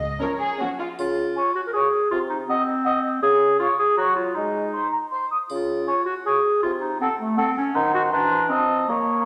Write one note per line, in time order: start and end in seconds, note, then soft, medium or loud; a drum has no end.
0.00 0.14 C#2 soft
0.00 0.14 C#3 soft
0.00 0.21 D#5 medium
0.21 0.50 F3 soft
0.21 0.50 C#4 soft
0.21 0.29 A#4 soft
0.21 0.61 C#5 soft
0.40 0.60 G#4 soft
0.59 0.90 F3 soft
0.59 0.90 C#4 soft
0.59 0.67 F#4 soft
0.79 0.87 F4 soft
0.99 1.31 C#3 soft
0.99 1.52 F4 medium
0.99 triangle soft
1.36 1.51 C#5 soft
1.36 1.43 G#5 soft
1.55 1.61 F#4 medium
1.67 1.75 A#4 soft
1.73 2.10 G#4 medium
1.73 1.89 C#5 soft
1.73 1.81 G#5 soft
2.11 2.42 C3 medium
2.11 2.19 F4 medium
2.29 2.38 D#4 medium
2.48 3.21 C4 medium
2.48 2.62 D#5 soft
2.48 2.55 F#5 soft
2.84 2.99 D#5 medium
2.84 2.91 F#5 medium
3.23 3.54 C#3 medium
3.23 3.59 G#4 medium
3.60 3.68 F4 medium
3.60 3.74 C#5 soft
3.60 3.67 F5 soft
3.79 3.96 G#4 medium
3.97 4.29 F#3 medium
3.97 4.15 F#4 medium
3.97 4.13 C#5 soft
3.97 4.04 A#5 soft
4.16 4.36 F4 medium
4.35 4.68 G#3 soft
4.35 5.12 D#4 medium
4.73 4.88 C5 soft
4.73 4.79 C6 soft
4.92 4.98 A#5 soft
5.11 5.26 C5 soft
5.11 5.17 C6 soft
5.31 5.37 D#6 soft
5.50 5.82 C#3 soft
5.50 6.03 F4 medium
5.50 triangle soft
5.88 6.01 C#5 soft
5.88 5.94 G#5 soft
6.06 6.14 F#4 medium
6.26 6.62 G#4 medium
6.26 6.40 C#5 soft
6.26 6.33 G#5 soft
6.63 6.95 C3 medium
6.63 6.71 F4 medium
6.81 6.99 D#4 medium
7.00 7.09 C4 medium
7.00 7.15 A4 soft
7.00 7.08 F#5 soft
7.20 7.39 A3 medium
7.37 7.56 C4 medium
7.37 7.51 A4 medium
7.37 7.44 F#5 medium
7.57 7.77 C#4 medium
7.74 8.09 D#3 medium
7.74 7.93 D#4 medium
7.74 8.09 C5 medium
7.74 8.13 F#5 medium
7.94 8.02 F#4 medium
8.11 8.52 E3 medium
8.11 8.51 D4 medium
8.11 8.30 C5 medium
8.11 8.48 A#5 medium
8.31 8.40 C5 medium
8.49 8.91 F3 soft
8.49 8.87 C4 medium
8.49 8.91 D#5 soft
8.49 8.90 A5 medium
8.88 9.25 A#3 medium
8.88 9.25 A#3 soft
8.88 9.25 C#5 soft
8.88 9.24 A#5 soft